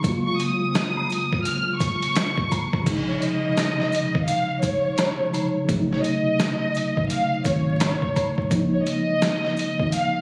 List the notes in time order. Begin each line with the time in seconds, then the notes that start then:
0.00 C#3 F#3, kick, maracas
0.04 G#3 A#3, closed hi-hat
0.09 F4
0.26 C#6
0.39 D#6, closed hi-hat, maracas
0.75 snare, closed hi-hat, maracas
0.97 high woodblock
1.10 closed hi-hat, maracas
1.33 kick
1.45 F6, closed hi-hat, maracas
1.79 C#6, kick, closed hi-hat, maracas
2.02 closed hi-hat
2.15 snare, closed hi-hat, maracas
2.37 kick
2.51 kick, closed hi-hat, high woodblock, maracas
2.73 kick, high woodblock
2.82 C#3 F3
2.86 A#1 C3 G#3, kick, closed hi-hat, crash, maracas
2.90 D#4
3.09 C#5
3.22 D#5, closed hi-hat, maracas
3.57 snare, closed hi-hat, maracas
3.80 snare
3.92 closed hi-hat, maracas
4.15 G#1, kick
4.25 F5, closed hi-hat, maracas
4.62 F1 C#5, kick, closed hi-hat, maracas
4.98 snare, closed hi-hat, high woodblock, maracas
5.29 C3 C#3 F3 G#3
5.33 D#4, closed hi-hat, high woodblock, maracas
5.64 C#3 F#3
5.69 A#1 C3 A3, kick, closed hi-hat, maracas
5.73 C#4
5.79 D#4
5.92 C#5, snare
6.04 D#5, closed hi-hat, maracas
6.40 snare, closed hi-hat, maracas
6.75 closed hi-hat, maracas
6.97 A1, kick
7.10 F5, closed hi-hat, maracas
7.45 G#1 C#5, kick, closed hi-hat, maracas
7.80 snare, closed hi-hat, high woodblock, maracas
8.02 kick
8.16 kick, closed hi-hat, high woodblock, maracas
8.38 kick
8.46 C#3 F3
8.51 A#1 G#3 A#3, kick, closed hi-hat, maracas
8.55 D#4
8.73 C#5
8.85 D#5, closed hi-hat, maracas
9.22 snare, closed hi-hat, maracas
9.45 snare
9.57 closed hi-hat, maracas
9.80 G#1, kick
9.92 F5, closed hi-hat, maracas